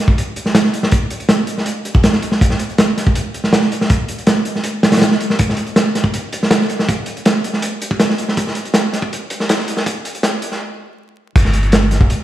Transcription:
0.08 kick
0.18 closed hi-hat
0.36 closed hi-hat
0.46 snare
0.55 snare, closed hi-hat
0.65 snare
0.74 closed hi-hat
0.83 snare
0.92 kick, closed hi-hat
1.10 closed hi-hat
1.20 closed hi-hat
1.29 snare, closed hi-hat
1.47 closed hi-hat
1.58 snare
1.66 closed hi-hat
1.85 closed hi-hat
1.95 kick
2.03 snare, closed hi-hat
2.13 snare
2.22 closed hi-hat
2.32 snare
2.41 kick, closed hi-hat
2.50 snare
2.59 closed hi-hat
2.70 closed hi-hat
2.78 snare, closed hi-hat
2.97 snare, closed hi-hat
3.07 kick
3.15 closed hi-hat
3.34 closed hi-hat
3.44 snare
3.53 snare, closed hi-hat
3.62 snare
3.72 closed hi-hat
3.81 snare
3.90 kick, closed hi-hat
4.08 closed hi-hat
4.18 closed hi-hat
4.27 snare, closed hi-hat
4.45 closed hi-hat
4.55 snare
4.64 closed hi-hat
4.83 snare, closed hi-hat
4.92 snare, closed hi-hat
4.96 snare, closed hi-hat
5.01 snare, closed hi-hat
5.11 snare
5.20 closed hi-hat
5.30 snare
5.39 kick, closed hi-hat
5.49 snare
5.57 closed hi-hat
5.67 closed hi-hat
5.76 snare, closed hi-hat
5.95 snare, closed hi-hat
6.04 kick
6.14 closed hi-hat
6.33 closed hi-hat
6.43 snare
6.51 snare, closed hi-hat
6.62 snare
6.70 closed hi-hat
6.79 snare
6.89 kick, closed hi-hat
7.06 closed hi-hat
7.17 closed hi-hat
7.25 snare, closed hi-hat
7.44 closed hi-hat
7.53 snare
7.62 closed hi-hat
7.82 closed hi-hat
7.91 kick
8.00 snare, closed hi-hat
8.10 snare
8.18 closed hi-hat
8.28 snare
8.37 kick, closed hi-hat
8.47 snare
8.55 closed hi-hat
8.65 closed hi-hat
8.74 snare, closed hi-hat
8.93 snare, closed hi-hat
9.02 kick
9.13 closed hi-hat
9.30 closed hi-hat
9.40 snare
9.49 snare, closed hi-hat
9.59 snare
9.68 closed hi-hat
9.77 snare
9.86 kick, closed hi-hat
10.05 closed hi-hat
10.15 closed hi-hat
10.23 snare, closed hi-hat
10.42 closed hi-hat
10.52 snare
11.35 G1, kick, closed hi-hat, crash
11.45 snare
11.53 closed hi-hat
11.63 closed hi-hat
11.72 snare, closed hi-hat
11.91 snare, closed hi-hat
12.01 D1, kick
12.10 closed hi-hat

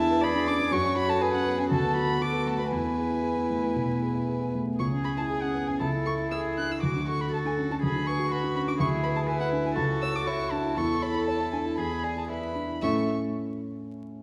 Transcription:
Already playing: E2 D4 E4 E5
0.00 G#4 A5
0.10 B4
0.22 G#4 D5 B5
0.35 D4
0.47 C#4 D6
0.59 D4
0.71 F#2 F#4 C#5 C#6
0.84 C#4
0.96 F#4 B5
1.08 A4 A5
1.21 F#4 G#4 B4 G#5
1.33 C#4 F#5
1.46 B3
1.58 C#4 G#5
1.71 D2 F#4 A4 A5
1.83 B3
1.96 F#4 B5
2.09 B3
2.21 F#4 A4 D6
2.33 B3
2.46 A3 A5
2.59 B3 B5
2.71 E2 E4 B4 G#5
2.85 B3
2.97 G#4
3.10 E4
3.23 G#4
3.36 B3
3.50 A3
3.63 B3
3.76 B2
3.89 B3
4.02 G#4
4.15 E4
4.28 G#4
4.41 B3
4.54 A3
4.67 B3
4.79 C#2 G#4 C#6
4.92 C#4
5.04 G#4 B5
5.17 E4 A5
5.29 G#4 G#5
5.42 C#4 F#5
5.54 B3
5.68 C#4 G#5
5.80 C#2 E4 A4 A5
5.93 E4
6.06 A4 C#6
6.19 E4
6.31 G#4 A4 E6
6.45 E4
6.58 D4 F#6
6.70 E4 E6
6.82 D2 F#4 D6
6.96 D4
7.08 A4 C#6
7.21 F#4 B5
7.33 A4 A5
7.45 D4 G#5
7.58 C#4
7.70 D4 A5
7.83 D2 G#4 B5
7.95 D4
8.07 B4 C#6
8.19 F#4
8.31 F#4 B4 B5
8.44 D4
8.55 C#4 B5
8.67 D4 D6
8.79 D2 E4 G#4 C#6
8.92 E4
9.03 B4 B5
9.16 G#4 A5
9.27 E4 B4 G#5
9.40 E4 F#5
9.52 D4
9.64 E4 G#5
9.76 C#2 F#4 A4 A5
9.89 E4
10.02 C#5 E6
10.14 A4 D6
10.26 E4 F#4 C#5 C#6
10.39 E4
10.52 D4 A5
10.65 E4
10.77 E2 E4 A4 C#6
10.90 E4
11.02 C#5 B5
11.15 A4
11.27 C#5 A5
11.40 E4
11.53 D4 G#5
11.66 E4 A5
11.78 E2 G#4 B5
11.91 E4
12.03 D5 G#5
12.16 G#4 A5
12.29 E4 B4 D5 B5
12.42 E4
12.55 D4
12.69 E4
12.82 A2 A3 C#4 E4 A4 E5 C#6

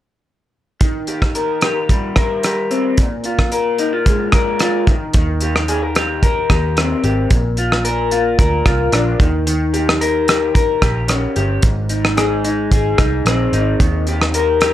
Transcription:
0.81 D#3, kick, closed hi-hat
1.07 G4, closed hi-hat
1.22 kick, cross-stick
1.35 A#4, closed hi-hat
1.61 G4, cross-stick, closed hi-hat
1.89 G3, kick, closed hi-hat
2.16 A#4, kick, cross-stick, closed hi-hat
2.43 G4, cross-stick, closed hi-hat
2.71 C4, closed hi-hat
2.98 A#2, kick, closed hi-hat
3.24 F4, closed hi-hat
3.39 kick, cross-stick
3.52 A#4, closed hi-hat
3.78 D#4, closed hi-hat
3.93 F4
4.06 G#3, kick, closed hi-hat
4.32 A#4, kick, cross-stick, closed hi-hat
4.59 F4, cross-stick, closed hi-hat
4.87 D#3, kick, closed hi-hat
5.13 D#2 D#3, kick, closed hi-hat
5.41 G4, closed hi-hat
5.56 cross-stick
5.68 G#4, closed hi-hat
5.82 A#4
5.95 G4, cross-stick, closed hi-hat
6.23 A#4, kick, closed hi-hat
6.50 D#2 G4, kick, cross-stick, closed hi-hat
6.77 C4, cross-stick, closed hi-hat
7.04 G#1 G4, closed hi-hat
7.31 A#1 A#2, kick, closed hi-hat
7.57 F4, closed hi-hat
7.72 cross-stick
7.85 A#4, closed hi-hat
8.11 F4, closed hi-hat
8.39 D2 A#4, kick, closed hi-hat
8.66 C2 F4, kick, cross-stick, closed hi-hat
8.92 A#1 D4, cross-stick, closed hi-hat
9.20 D#2 D#3, kick, closed hi-hat
9.47 D#3, closed hi-hat
9.73 G4, closed hi-hat
9.89 cross-stick
10.01 A#4, closed hi-hat
10.28 G4, cross-stick, closed hi-hat
10.55 A#4, kick, closed hi-hat
10.82 A#1 G4, kick, cross-stick, closed hi-hat
11.08 C#4, cross-stick, closed hi-hat
11.36 G1 G4, closed hi-hat
11.62 G#1 G#2, kick, closed hi-hat
11.89 D#4, closed hi-hat
12.05 cross-stick
12.17 G#4, cross-stick, closed hi-hat
12.44 D#4, closed hi-hat
12.71 G#1 G#4, kick, closed hi-hat
12.98 C2 D#4, kick, cross-stick, closed hi-hat
13.25 A#1 C4, cross-stick, closed hi-hat
13.52 G#1 D#4, closed hi-hat
13.80 D#2 D#3, kick, closed hi-hat
14.07 G4, closed hi-hat
14.22 cross-stick
14.34 A#4, closed hi-hat
14.61 G4, cross-stick, closed hi-hat

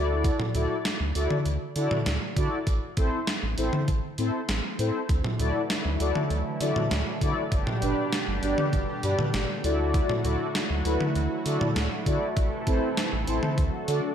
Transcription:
Already playing: D2 E4 F#4 A4 D5
0.24 kick, closed hi-hat
0.40 mid tom
0.55 D2 E4 F#4 A4 D5, closed hi-hat
0.85 snare, closed hi-hat
1.00 D2
1.15 D2 E4 F#4 A4 D5, closed hi-hat
1.31 mid tom
1.46 D2, closed hi-hat
1.76 D3 E4 F#4 A4 D5, closed hi-hat
1.91 mid tom
2.06 D2, snare, closed hi-hat
2.36 D3 E4 F#4 A4 D5, kick, closed hi-hat
2.67 A1, kick, closed hi-hat
2.97 A1 C4 E4 A4 C5, kick, closed hi-hat
3.27 snare, closed hi-hat
3.43 A1
3.58 A1 C4 E4 A4 C5, closed hi-hat
3.73 mid tom
3.88 A1, kick, closed hi-hat
4.18 A2 C4 E4 A4 C5, closed hi-hat
4.49 A1, snare, closed hi-hat
4.79 A2 C4 E4 A4 C5, closed hi-hat
5.09 D2 D3 E3 F#3 A3 E4, kick, closed hi-hat
5.24 mid tom
5.39 D2 E4 F#4 A4 D5, closed hi-hat
5.70 snare, closed hi-hat
5.85 D2
6.00 D2 E4 F#4 A4 D5, closed hi-hat
6.15 mid tom
6.30 D2, closed hi-hat
6.61 D3 E4 F#4 A4 D5, closed hi-hat
6.76 mid tom
6.91 D2, snare, closed hi-hat
7.21 D3 E4 F#4 A4 D5, kick, closed hi-hat
7.52 G1 B2 D3 G3 D4 G4, kick, closed hi-hat
7.67 mid tom
7.82 G1 D4 G4 B4 D5, closed hi-hat
8.13 snare, closed hi-hat
8.28 G1
8.43 G1 D4 G4 B4 D5, closed hi-hat
8.58 mid tom
8.73 G1, kick, closed hi-hat
9.03 G2 D4 G4 B4 D5, closed hi-hat
9.19 mid tom
9.34 G1, snare, closed hi-hat
9.64 D2 F#3 A3 E4 F#4 A4 D5, closed hi-hat
9.94 kick, closed hi-hat
10.10 mid tom
10.25 D2 E4 F#4 A4 D5, closed hi-hat
10.55 snare, closed hi-hat
10.70 D2
10.85 D2 E4 F#4 A4 B4, closed hi-hat
11.01 mid tom
11.15 D2, closed hi-hat
11.46 D3 E4 F#4 A4 D5, closed hi-hat
11.61 mid tom
11.76 D2, snare, closed hi-hat
12.06 D3 E4 F#4 A4 D5, kick, closed hi-hat
12.37 A1 C3 E3 E4 A4, kick, closed hi-hat
12.67 A1 C4 E4 A4 C5, kick, closed hi-hat
12.97 snare, closed hi-hat
13.12 A1
13.27 A1 C4 E4 A4 C5, closed hi-hat
13.43 mid tom
13.58 D2 D3 F#3 F#4, kick, closed hi-hat
13.88 D3 D4 F#4 A4 D5, closed hi-hat

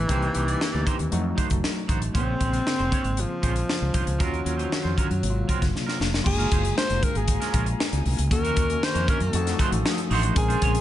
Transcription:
Already playing: E3 A3 B3 G#4
0.07 C2 A#3 C4 D#4 G4 C5, kick, closed hi-hat
0.22 closed hi-hat
0.35 C2 A#3 D#4 G4 C5, closed hi-hat
0.47 A#3 D#4 G4 D5, closed hi-hat
0.61 snare
0.72 D2 A#3 D#4 G4 D5
0.85 A#3 D#4 G4 C5, kick, closed hi-hat
0.98 D#2, muted clean electric guitar stroke, closed hi-hat
1.10 F2 F#3 A3 D#4 F#4, closed hi-hat
1.24 muted clean electric guitar stroke
1.36 A3 D#4 F#4 C5, kick, closed hi-hat
1.49 F1, muted clean electric guitar stroke, kick, closed hi-hat
1.64 snare
1.76 muted clean electric guitar stroke
1.88 A1 A3 D#4 F#4 C5, kick, closed hi-hat
2.01 muted clean electric guitar stroke, closed hi-hat
2.13 A#1 C#3 G#3 A#3 C4 C#4 F4 G#4 C5, kick, closed hi-hat
2.39 A#1 G#3 C#4 F4 C5, kick, closed hi-hat
2.52 G#3 C#4 F4 C5, closed hi-hat
2.65 muted clean electric guitar stroke, snare
2.78 F1 G#3 C#4 F4 C5, closed hi-hat
2.91 G#3 C#4 F4 C#5, kick, closed hi-hat
3.04 G#1, muted clean electric guitar stroke, closed hi-hat
3.17 F3, closed hi-hat
3.29 muted clean electric guitar stroke
3.42 A#1 G#3 C#4 F4 C5, kick, closed hi-hat
3.55 muted clean electric guitar stroke, closed hi-hat
3.69 snare
3.80 C#2, muted clean electric guitar stroke
3.93 C2 G#3 C#4 F4 C5, kick, closed hi-hat
4.06 C#2, muted clean electric guitar stroke, closed hi-hat
4.18 D#2 D#3 F#3 C#4 F4 A#4, kick, closed hi-hat
4.22 F#3
4.34 closed hi-hat
4.44 D#2 F#3 C#4 F4 A#4, closed hi-hat
4.58 F#3 C#4 F4 C5, closed hi-hat
4.70 muted clean electric guitar stroke, snare
4.83 F2 F#3 C#4 F4 C5
4.96 F#3 C#4 F4 A#4, kick, closed hi-hat
5.09 F#2, muted clean electric guitar stroke, closed hi-hat
5.21 G#1 C3 F#3 A#3 E4, closed hi-hat
5.30 F4
5.36 muted clean electric guitar stroke
5.48 F#3 C4 F4 A#4, kick, closed hi-hat
5.61 F#1, muted clean electric guitar stroke, kick, snare, closed hi-hat
5.74 muted clean electric guitar stroke, snare
5.86 F#3 C4 F4 A#4, snare
6.00 F1, muted clean electric guitar stroke, snare
6.13 muted clean electric guitar stroke, snare
6.24 F#1 G#3 A#3 F4 F#4 G#4 F5 G#5 A#5, muted clean electric guitar stroke, kick, crash
6.38 G#3 C#4 F4 A#4, closed hi-hat
6.51 F#1 G#3 C#4 F4 C5, kick, closed hi-hat
6.64 muted clean electric guitar stroke, closed hi-hat
6.77 C5, muted clean electric guitar stroke, snare
6.90 F1, muted clean electric guitar stroke, closed hi-hat
7.03 A#4, kick, closed hi-hat
7.15 G#1 G#4, muted clean electric guitar stroke, closed hi-hat
7.28 muted clean electric guitar stroke, kick, closed hi-hat
7.40 G#3 C#4 F4 A#4, snare, closed hi-hat
7.53 A#1 G#3 C#4 F4 A#4, kick, closed hi-hat
7.66 muted clean electric guitar stroke, closed hi-hat
7.79 muted clean electric guitar stroke, snare
7.92 C#2, muted clean electric guitar stroke, closed hi-hat
8.06 C2, open hi-hat
8.17 C#2, muted clean electric guitar stroke, closed hi-hat
8.30 D#2 D#3 A#3 C#4 F#4 A#4 D#5 C#6, muted clean electric guitar stroke, kick, closed hi-hat
8.43 A#3 C#4 F#4 A#4, closed hi-hat
8.56 D#2 A#3 C#4 F#4 A#4, kick, closed hi-hat
8.69 muted clean electric guitar stroke, closed hi-hat
8.81 C5, muted clean electric guitar stroke, snare
8.94 F2 A#3 C#4 F#4 A#4, closed hi-hat
9.07 A#3 C#4 F#4 A#4, kick, closed hi-hat
9.20 F#2 A4, muted clean electric guitar stroke, closed hi-hat
9.32 F2 F3 A3 D#4 F#4 A4 F5 D#6, closed hi-hat
9.46 muted clean electric guitar stroke, snare, closed hi-hat
9.59 A3 D#4 F#4 C5, kick, closed hi-hat
9.72 A1, muted clean electric guitar stroke, closed hi-hat
9.85 muted clean electric guitar stroke, snare
9.98 muted clean electric guitar stroke, closed hi-hat
10.10 A1 A3 D#4 F#4 C5, open hi-hat
10.23 A3 D#4 F#4 C5, closed hi-hat
10.35 A#1 G#3 C4 C#4 G#4 A#4 C5 G#5 C6, kick, closed hi-hat
10.48 G#3 C#4 F4 C5, closed hi-hat
10.61 A#1 G#3 C#4 F4 C#5, kick, closed hi-hat
10.74 muted clean electric guitar stroke, closed hi-hat

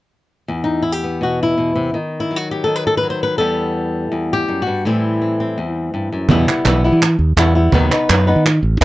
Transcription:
0.48 E2
0.64 D#4
0.82 E4
0.92 G4
1.04 B3
1.21 B2 F#4
1.43 E4
1.58 B2
1.76 C3
1.94 D#3
2.20 E4
2.31 F#3
2.36 F#4
2.51 G4
2.64 D#3 A4
2.76 B4
2.87 A4
2.97 B4
3.03 F#3
3.10 C5
3.23 B4
3.38 E2 G3 B3 E4 A4
4.12 E2
4.33 G4
4.48 F#2
4.62 F#4
4.67 G2
4.85 A2 E3 G3 C4 E4
5.22 C4
5.40 C4
5.58 E2
5.94 G2
6.12 F#2
6.29 E2 B2 E3 G3 B3 E4, cajon bass
6.48 G3 B3 E4, clap
6.65 B1 E3 G3 B3 E4, cajon slap, clap
6.84 G3 B3 E4
6.92 E3
7.01 muted nylon-string guitar stroke, cajon slap, clap
7.19 D#2
7.37 E2 G3 B3 E4, cajon slap, clap
7.55 G3 B3 E4
7.72 D#2 D#3 F#3 B3 D#4 B4, cajon bass
7.91 B3 D#4 B4, clap
8.09 F#2 F#3 B3 D#4 B4, cajon slap, clap
8.27 B3 D#4 B4
8.36 D#3
8.45 muted nylon-string guitar stroke, cajon slap, clap
8.63 A1
8.81 D#2, cajon bass, cajon slap

